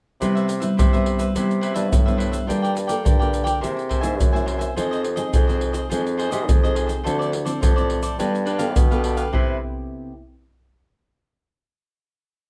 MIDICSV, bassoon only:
0, 0, Header, 1, 2, 480
1, 0, Start_track
1, 0, Key_signature, 0, "major"
1, 0, Tempo, 569260
1, 175, Time_signature, 4, 2, 24, 8
1, 10537, End_track
2, 0, Start_track
2, 0, Title_t, "Bassoon"
2, 0, Program_c, 0, 70
2, 173, Note_on_c, 0, 48, 83
2, 582, Note_off_c, 0, 48, 0
2, 663, Note_on_c, 0, 48, 91
2, 1068, Note_off_c, 0, 48, 0
2, 1142, Note_on_c, 0, 48, 86
2, 1446, Note_off_c, 0, 48, 0
2, 1476, Note_on_c, 0, 43, 84
2, 1620, Note_on_c, 0, 45, 71
2, 1633, Note_off_c, 0, 43, 0
2, 2027, Note_off_c, 0, 45, 0
2, 2097, Note_on_c, 0, 43, 71
2, 2507, Note_off_c, 0, 43, 0
2, 2571, Note_on_c, 0, 43, 88
2, 2984, Note_off_c, 0, 43, 0
2, 3055, Note_on_c, 0, 48, 84
2, 3364, Note_off_c, 0, 48, 0
2, 3389, Note_on_c, 0, 44, 93
2, 3540, Note_on_c, 0, 42, 81
2, 3553, Note_off_c, 0, 44, 0
2, 3950, Note_off_c, 0, 42, 0
2, 4018, Note_on_c, 0, 41, 87
2, 4428, Note_off_c, 0, 41, 0
2, 4508, Note_on_c, 0, 41, 89
2, 4915, Note_off_c, 0, 41, 0
2, 4988, Note_on_c, 0, 41, 87
2, 5293, Note_off_c, 0, 41, 0
2, 5329, Note_on_c, 0, 48, 92
2, 5472, Note_on_c, 0, 41, 82
2, 5485, Note_off_c, 0, 48, 0
2, 5878, Note_off_c, 0, 41, 0
2, 5946, Note_on_c, 0, 38, 84
2, 6354, Note_off_c, 0, 38, 0
2, 6424, Note_on_c, 0, 41, 91
2, 6781, Note_off_c, 0, 41, 0
2, 6903, Note_on_c, 0, 43, 88
2, 7385, Note_on_c, 0, 47, 83
2, 7398, Note_off_c, 0, 43, 0
2, 7792, Note_off_c, 0, 47, 0
2, 7862, Note_on_c, 0, 48, 85
2, 8085, Note_off_c, 0, 48, 0
2, 10537, End_track
0, 0, End_of_file